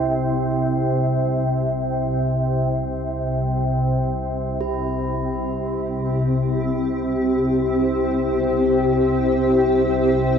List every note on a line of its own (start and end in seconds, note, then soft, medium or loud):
0.00 4.60 C2 medium
0.00 4.60 C3 medium
0.00 4.63 C5 medium
4.61 10.39 C2 medium
4.61 10.39 C3 medium
4.61 10.39 C4 medium
4.61 10.39 G4 medium
4.93 10.39 G4 medium
6.72 10.39 C5 medium
7.19 10.39 G5 medium